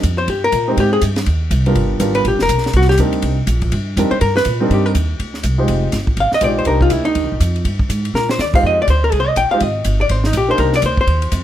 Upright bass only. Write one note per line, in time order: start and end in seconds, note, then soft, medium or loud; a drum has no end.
0.03 0.27 F2 medium
0.27 0.51 G2 medium
0.52 0.76 A#2 medium
0.77 1.01 G#2 medium
1.02 1.26 G2 medium
1.27 1.50 D#2 medium
1.51 1.74 C2 medium
1.76 1.99 G1 medium
2.00 2.24 G#1 medium
2.25 2.32 A#1 medium
2.32 2.40 G1 medium
2.41 2.48 F1 medium
2.49 2.73 B1 medium
2.74 2.97 C2 medium
2.98 3.22 D2 loud
3.23 3.47 C2 medium
3.47 3.71 A#1 medium
3.72 3.96 G2 loud
3.97 4.10 F2 medium
4.11 muted upright bass stroke soft
4.21 4.45 G2 medium
4.46 4.69 A#2 medium
4.70 4.94 G2 medium
4.95 5.18 D#2 medium
5.19 5.43 D2 medium
5.44 5.67 C2 medium
5.69 5.92 F1 medium
5.93 6.16 G1 medium
6.17 6.31 G#1 medium
6.32 muted upright bass stroke soft
6.41 6.65 A#1 medium
6.66 6.90 C2 medium
6.91 7.14 D2 medium
7.15 7.23 D#2 medium
7.23 7.31 C2 medium
7.32 7.39 A#1 medium
7.40 7.64 F2 medium
7.65 7.88 G2 medium
7.89 8.13 G#2 medium
8.14 8.37 A#2 medium
8.39 8.62 D#2 medium
8.63 8.86 F2 medium
8.88 9.11 D2 medium
9.12 9.35 C2 medium
9.36 9.50 A#1 medium
9.51 muted upright bass stroke soft
9.61 9.84 G#1 medium
9.85 10.09 G1 medium
10.10 10.33 G#1 medium
10.33 10.57 A#1 medium
10.58 10.82 C2 medium
10.82 11.06 D2 medium
11.07 11.31 D#2 medium
11.32 11.44 F2 loud